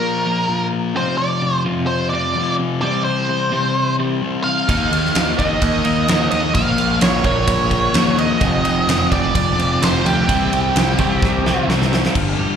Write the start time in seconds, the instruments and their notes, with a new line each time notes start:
Already playing: distorted electric guitar A#2 F3 A#3, lead electric guitar A#4
0.01 clean electric guitar A#2 F3
0.26 clean electric guitar A#2 F3 A#3
0.49 clean electric guitar A#2 F3, distorted electric guitar A#3
0.73 clean electric guitar A#2 F3
0.95 clean electric guitar F2 C3 F3, lead electric guitar C5
1.18 clean electric guitar F2 C3, lead electric guitar D5
1.42 clean electric guitar F2 C3
1.65 clean electric guitar F2 C3 F3
1.87 clean electric guitar F2, lead electric guitar C5
2.10 clean electric guitar F2 C3 F3, lead electric guitar D5
2.35 clean electric guitar F2 C3, distorted electric guitar F3
2.60 clean electric guitar F2 C3
2.82 clean electric guitar C3 E3 G3, distorted electric guitar C4, lead electric guitar D5
3.04 clean electric guitar C3 E3, lead electric guitar C5
3.29 clean electric guitar C3 E3
3.51 clean electric guitar C3 E3 G3, distorted electric guitar C4
3.76 clean electric guitar C3 E3
3.99 clean electric guitar C3 E3 G3
4.22 clean electric guitar C3 E3, distorted electric guitar G3 C4
4.44 clean electric guitar C3 E3, lead electric guitar F5
4.69 picked electric bass D#2, clean electric guitar D#3 A#3 D#4, kick, ride
4.92 picked electric bass D#2, clean electric guitar D#3 A#3, ride
5.05 snare
5.15 picked electric bass D#2, clean electric guitar D#3 A#3, snare, ride
5.38 picked electric bass D#2, clean electric guitar D#3 A#3 D#4, lead electric guitar D#5, kick, ride
5.62 picked electric bass D#2, clean electric guitar D#3 A#3, kick, ride
5.84 picked electric bass D#2, clean electric guitar D#3 A#3 D#4, ride
6.08 picked electric bass D#2, clean electric guitar D#3 A#3, distorted electric guitar D#4, snare, ride
6.31 picked electric bass D#2, clean electric guitar D#3 A#3, lead electric guitar D#5, ride
6.54 picked electric bass A#1, clean electric guitar A#2 F3 A#3, lead electric guitar F5, kick, ride
6.78 picked electric bass A#1, clean electric guitar A#2 F3, ride
7.01 picked electric bass A#1, clean electric guitar A#2 F3, lead electric guitar C#5, snare, ride
7.23 picked electric bass A#1, clean electric guitar A#2 F3 A#3, lead electric guitar C#5, kick, ride
7.47 picked electric bass A#1, clean electric guitar A#2 F3, kick, ride
7.70 clean electric guitar A#2 F3 A#3, kick, ride
7.94 picked electric bass D#2, clean electric guitar A#2 F3, distorted electric guitar A#3, snare, ride
8.18 clean electric guitar A#2 F3, lead electric guitar D#5, ride
8.40 picked electric bass F1, clean electric guitar F2 C3 F3, kick, ride
8.64 picked electric bass F1, clean electric guitar F2 C3, ride
8.87 picked electric bass F1, clean electric guitar F2 C3, snare, ride
9.11 picked electric bass F1, clean electric guitar F2 C3 F3, lead electric guitar D5, kick, ride
9.35 picked electric bass F1, clean electric guitar F2 C3, kick, ride
9.58 picked electric bass F1, clean electric guitar F2 C3 F3, ride
9.81 picked electric bass F1, distorted electric guitar F2 F3, clean electric guitar C3, lead electric guitar C5, snare, ride
10.05 picked electric bass D2, clean electric guitar F2 C3, lead electric guitar G4, ride
10.29 picked electric bass C2, clean electric guitar C3 E3 G3, distorted electric guitar C4, kick, ride
10.52 picked electric bass C2, clean electric guitar C3 E3, ride
10.76 picked electric bass C2, clean electric guitar C3 E3, snare, ride
10.97 picked electric bass C2, clean electric guitar C3 E3 G3, distorted electric guitar C4, kick, ride
11.22 picked electric bass C2, kick, snare
11.46 clean electric guitar C3 E3 G3, snare
11.68 picked electric bass C2, clean electric guitar C3 E3, distorted electric guitar G3 C4, snare
11.82 snare
11.92 clean electric guitar C3 E3, snare
12.05 snare
12.14 picked electric bass G1, clean electric guitar G2, distorted electric guitar D3 G3, kick, crash
12.37 distorted electric guitar G2 D3 G3, clean electric guitar G4